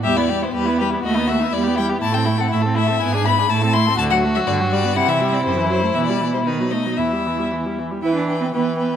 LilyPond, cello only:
\new Staff \with { instrumentName = "Cello" } { \clef bass \time 2/4 \key e \minor \tempo 4 = 121 e,4 e,4 | dis,4 e,4 | a,4 a,4 | gis,4 a,4 |
d,4 g,4 | c4 fis,4 | b,2 | e,4. r8 |
e'16 d'8 c'16 b8 b8 | }